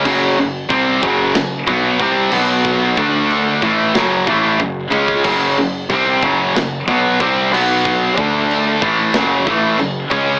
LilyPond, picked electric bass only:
\new Staff \with { instrumentName = "Picked electric bass" } { \clef bass \time 4/4 \key fis \minor \tempo 4 = 92 fis,,8 fis,,8 bis,,8 fis,,8 fis,,8 b,,8 bis,,8 b,,8~ | b,,8 d,4 a,,8 fis,,8 a,,8 fis,,8 cis,8 | fis,,8 fis,,8 bis,,8 fis,,8 fis,,8 b,,8 bis,,8 b,,8~ | b,,8 d,4 a,,8 fis,,8 a,,8 fis,,8 cis,8 | }